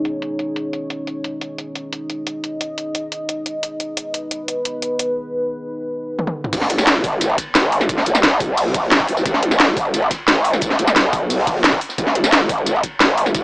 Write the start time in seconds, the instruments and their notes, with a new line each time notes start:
Already playing: ambient pad B3 D#4 G#4 C#5
0.05 closed hi-hat
0.22 closed hi-hat
0.39 closed hi-hat
0.56 closed hi-hat
0.73 closed hi-hat
0.90 closed hi-hat
1.07 ambient pad D#5, closed hi-hat
1.24 closed hi-hat
1.41 closed hi-hat
1.58 closed hi-hat
1.75 closed hi-hat
1.93 closed hi-hat
2.10 closed hi-hat
2.27 closed hi-hat
2.44 closed hi-hat
2.61 closed hi-hat
2.78 closed hi-hat
2.95 closed hi-hat
3.12 closed hi-hat
3.29 closed hi-hat
3.46 closed hi-hat
3.63 closed hi-hat
3.80 ambient pad B4, closed hi-hat
3.97 closed hi-hat
4.14 closed hi-hat
4.31 closed hi-hat
4.48 closed hi-hat
4.65 closed hi-hat
4.82 closed hi-hat
4.99 closed hi-hat
6.19 high tom
6.27 high tom
6.44 mid tom
6.53 wobble bass G#1, kick, closed hi-hat, crash, ride, tambourine
6.61 snare
6.70 closed hi-hat, ride
6.78 snare, ride, tambourine
6.87 snare, closed hi-hat, ride, tambourine
6.95 ride
7.04 kick, open hi-hat, ride, tambourine
7.13 ride
7.21 closed hi-hat, ride, tambourine
7.29 ride
7.38 kick, closed hi-hat, ride, tambourine
7.55 wobble bass G#1, snare, closed hi-hat, ride, tambourine
7.64 snare
7.72 open hi-hat, ride
7.81 snare, ride, tambourine
7.89 kick, closed hi-hat, ride, tambourine
7.97 snare
8.06 wobble bass G#1, closed hi-hat, ride, tambourine
8.15 snare, tambourine
8.23 wobble bass B1, snare, closed hi-hat, ride, tambourine
8.40 kick, open hi-hat, ride, tambourine
8.57 closed hi-hat, open hi-hat, tambourine
8.66 snare
8.74 kick, closed hi-hat, ride, tambourine
8.83 snare
8.91 snare, closed hi-hat, ride, tambourine
9.00 kick, ride
9.07 wobble bass F#1, open hi-hat, ride
9.17 snare, tambourine
9.26 wobble bass G#1, kick, closed hi-hat, ride, tambourine
9.34 snare
9.43 closed hi-hat, ride
9.51 snare, ride, tambourine
9.59 snare, closed hi-hat, ride, tambourine
9.68 ride
9.76 kick, open hi-hat, ride, tambourine
9.85 ride
9.94 closed hi-hat, ride, tambourine
10.02 ride
10.10 kick, snare, closed hi-hat, ride, tambourine
10.28 wobble bass G#1, snare, closed hi-hat, ride, tambourine
10.35 snare
10.44 open hi-hat, ride
10.53 snare, ride, tambourine
10.61 kick, closed hi-hat, ride, tambourine
10.70 snare
10.79 wobble bass G#1, closed hi-hat, ride, tambourine
10.87 snare, tambourine
10.96 wobble bass B1, snare, closed hi-hat, ride, tambourine
11.13 kick, open hi-hat, ride, tambourine
11.30 closed hi-hat, open hi-hat, tambourine
11.39 snare
11.47 kick, closed hi-hat, ride, tambourine
11.56 snare
11.64 snare, closed hi-hat, ride, tambourine
11.72 kick, ride
11.81 open hi-hat, ride
11.89 snare, tambourine
11.98 wobble bass G#1, kick, closed hi-hat, ride, tambourine
12.07 snare
12.15 closed hi-hat, ride
12.24 snare, ride, tambourine
12.32 snare, closed hi-hat, ride, tambourine
12.41 ride
12.49 kick, open hi-hat, ride, tambourine
12.58 ride
12.66 closed hi-hat, ride, tambourine
12.76 ride
12.83 kick, closed hi-hat, ride, tambourine
13.00 wobble bass G#1, snare, closed hi-hat, ride, tambourine
13.09 snare
13.18 open hi-hat, ride
13.26 snare, ride, tambourine
13.35 kick, closed hi-hat, ride, tambourine